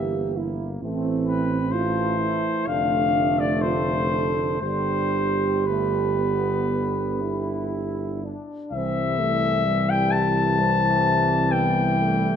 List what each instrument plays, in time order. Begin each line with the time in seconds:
Already playing: tuba G1, euphonium E3, trombone section A#3, french horn section G4, flugelhorn E5
0.37 french horn section E4
0.81 tuba A1, euphonium E3, trombone section A3, french horn section C4
1.27 flugelhorn B4
1.71 euphonium E3, trombone section A3, french horn section F4, flugelhorn C5
2.19 french horn section E4
2.67 tuba F1, euphonium D3, trombone section A3, french horn section D4, flugelhorn F5
3.39 flugelhorn D5
3.61 french horn section F4, flugelhorn C5
4.11 french horn section A4
4.62 tuba G1, euphonium D3, trombone section G3, french horn section G4, flugelhorn C5
5.66 euphonium D3, trombone section A3, flugelhorn B4
6.19 trombone section B3
7.21 trombone section E4
8.23 trombone section D4
8.71 tuba C2, trombone section E3, french horn section G3, euphonium C4, flugelhorn E5
9.20 euphonium A3
9.67 euphonium G3
9.90 flugelhorn G5
10.12 flugelhorn A5
10.59 euphonium C4
11.52 euphonium B3, flugelhorn G5
11.99 euphonium A3